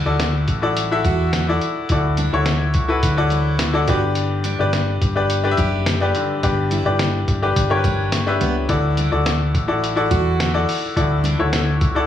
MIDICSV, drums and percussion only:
0, 0, Header, 1, 2, 480
1, 0, Start_track
1, 0, Key_signature, 2, "major"
1, 0, Tempo, 566572
1, 1611, Time_signature, 4, 2, 24, 8
1, 10222, End_track
2, 0, Start_track
2, 0, Title_t, "Drums"
2, 166, Note_on_c, 9, 38, 103
2, 166, Note_on_c, 9, 42, 77
2, 251, Note_off_c, 9, 38, 0
2, 251, Note_off_c, 9, 42, 0
2, 404, Note_on_c, 9, 42, 55
2, 407, Note_on_c, 9, 36, 67
2, 488, Note_off_c, 9, 42, 0
2, 492, Note_off_c, 9, 36, 0
2, 649, Note_on_c, 9, 42, 93
2, 733, Note_off_c, 9, 42, 0
2, 885, Note_on_c, 9, 42, 54
2, 887, Note_on_c, 9, 36, 66
2, 970, Note_off_c, 9, 42, 0
2, 972, Note_off_c, 9, 36, 0
2, 1126, Note_on_c, 9, 38, 112
2, 1127, Note_on_c, 9, 42, 98
2, 1211, Note_off_c, 9, 38, 0
2, 1212, Note_off_c, 9, 42, 0
2, 1249, Note_on_c, 9, 38, 37
2, 1334, Note_off_c, 9, 38, 0
2, 1368, Note_on_c, 9, 42, 65
2, 1452, Note_off_c, 9, 42, 0
2, 1602, Note_on_c, 9, 42, 73
2, 1607, Note_on_c, 9, 36, 83
2, 1687, Note_off_c, 9, 42, 0
2, 1692, Note_off_c, 9, 36, 0
2, 1840, Note_on_c, 9, 42, 72
2, 1925, Note_off_c, 9, 42, 0
2, 2082, Note_on_c, 9, 38, 103
2, 2082, Note_on_c, 9, 42, 70
2, 2166, Note_off_c, 9, 38, 0
2, 2166, Note_off_c, 9, 42, 0
2, 2319, Note_on_c, 9, 42, 62
2, 2326, Note_on_c, 9, 36, 77
2, 2404, Note_off_c, 9, 42, 0
2, 2411, Note_off_c, 9, 36, 0
2, 2565, Note_on_c, 9, 42, 87
2, 2567, Note_on_c, 9, 36, 84
2, 2650, Note_off_c, 9, 42, 0
2, 2651, Note_off_c, 9, 36, 0
2, 2798, Note_on_c, 9, 42, 51
2, 2883, Note_off_c, 9, 42, 0
2, 3042, Note_on_c, 9, 38, 115
2, 3043, Note_on_c, 9, 42, 95
2, 3126, Note_off_c, 9, 38, 0
2, 3127, Note_off_c, 9, 42, 0
2, 3163, Note_on_c, 9, 38, 35
2, 3247, Note_off_c, 9, 38, 0
2, 3283, Note_on_c, 9, 42, 68
2, 3287, Note_on_c, 9, 36, 92
2, 3368, Note_off_c, 9, 42, 0
2, 3372, Note_off_c, 9, 36, 0
2, 3519, Note_on_c, 9, 42, 83
2, 3603, Note_off_c, 9, 42, 0
2, 3761, Note_on_c, 9, 42, 70
2, 3846, Note_off_c, 9, 42, 0
2, 4007, Note_on_c, 9, 38, 94
2, 4008, Note_on_c, 9, 42, 82
2, 4092, Note_off_c, 9, 38, 0
2, 4092, Note_off_c, 9, 42, 0
2, 4249, Note_on_c, 9, 36, 79
2, 4249, Note_on_c, 9, 42, 61
2, 4334, Note_off_c, 9, 36, 0
2, 4334, Note_off_c, 9, 42, 0
2, 4488, Note_on_c, 9, 42, 85
2, 4573, Note_off_c, 9, 42, 0
2, 4722, Note_on_c, 9, 42, 50
2, 4729, Note_on_c, 9, 36, 72
2, 4806, Note_off_c, 9, 42, 0
2, 4813, Note_off_c, 9, 36, 0
2, 4967, Note_on_c, 9, 38, 105
2, 4968, Note_on_c, 9, 42, 94
2, 5052, Note_off_c, 9, 38, 0
2, 5053, Note_off_c, 9, 42, 0
2, 5088, Note_on_c, 9, 38, 34
2, 5173, Note_off_c, 9, 38, 0
2, 5207, Note_on_c, 9, 42, 61
2, 5292, Note_off_c, 9, 42, 0
2, 5449, Note_on_c, 9, 42, 79
2, 5450, Note_on_c, 9, 36, 88
2, 5534, Note_off_c, 9, 42, 0
2, 5535, Note_off_c, 9, 36, 0
2, 5684, Note_on_c, 9, 42, 68
2, 5769, Note_off_c, 9, 42, 0
2, 5925, Note_on_c, 9, 38, 105
2, 5925, Note_on_c, 9, 42, 75
2, 6009, Note_off_c, 9, 38, 0
2, 6010, Note_off_c, 9, 42, 0
2, 6167, Note_on_c, 9, 36, 72
2, 6167, Note_on_c, 9, 42, 60
2, 6252, Note_off_c, 9, 36, 0
2, 6252, Note_off_c, 9, 42, 0
2, 6407, Note_on_c, 9, 36, 87
2, 6408, Note_on_c, 9, 42, 88
2, 6492, Note_off_c, 9, 36, 0
2, 6492, Note_off_c, 9, 42, 0
2, 6642, Note_on_c, 9, 42, 54
2, 6646, Note_on_c, 9, 36, 72
2, 6727, Note_off_c, 9, 42, 0
2, 6731, Note_off_c, 9, 36, 0
2, 6881, Note_on_c, 9, 38, 109
2, 6882, Note_on_c, 9, 42, 98
2, 6966, Note_off_c, 9, 38, 0
2, 6967, Note_off_c, 9, 42, 0
2, 7007, Note_on_c, 9, 38, 37
2, 7091, Note_off_c, 9, 38, 0
2, 7123, Note_on_c, 9, 42, 65
2, 7208, Note_off_c, 9, 42, 0
2, 7362, Note_on_c, 9, 42, 73
2, 7365, Note_on_c, 9, 36, 91
2, 7446, Note_off_c, 9, 42, 0
2, 7450, Note_off_c, 9, 36, 0
2, 7602, Note_on_c, 9, 42, 69
2, 7686, Note_off_c, 9, 42, 0
2, 7846, Note_on_c, 9, 38, 106
2, 7846, Note_on_c, 9, 42, 75
2, 7931, Note_off_c, 9, 38, 0
2, 7931, Note_off_c, 9, 42, 0
2, 8087, Note_on_c, 9, 36, 67
2, 8088, Note_on_c, 9, 42, 57
2, 8172, Note_off_c, 9, 36, 0
2, 8173, Note_off_c, 9, 42, 0
2, 8334, Note_on_c, 9, 42, 79
2, 8418, Note_off_c, 9, 42, 0
2, 8564, Note_on_c, 9, 42, 58
2, 8567, Note_on_c, 9, 36, 61
2, 8649, Note_off_c, 9, 42, 0
2, 8652, Note_off_c, 9, 36, 0
2, 8811, Note_on_c, 9, 38, 122
2, 8812, Note_on_c, 9, 42, 85
2, 8896, Note_off_c, 9, 38, 0
2, 8897, Note_off_c, 9, 42, 0
2, 8934, Note_on_c, 9, 38, 36
2, 9018, Note_off_c, 9, 38, 0
2, 9055, Note_on_c, 9, 46, 75
2, 9139, Note_off_c, 9, 46, 0
2, 9290, Note_on_c, 9, 36, 89
2, 9294, Note_on_c, 9, 42, 74
2, 9375, Note_off_c, 9, 36, 0
2, 9378, Note_off_c, 9, 42, 0
2, 9531, Note_on_c, 9, 42, 72
2, 9616, Note_off_c, 9, 42, 0
2, 9767, Note_on_c, 9, 38, 113
2, 9767, Note_on_c, 9, 42, 84
2, 9851, Note_off_c, 9, 38, 0
2, 9852, Note_off_c, 9, 42, 0
2, 10007, Note_on_c, 9, 42, 58
2, 10009, Note_on_c, 9, 36, 79
2, 10091, Note_off_c, 9, 42, 0
2, 10094, Note_off_c, 9, 36, 0
2, 10222, End_track
0, 0, End_of_file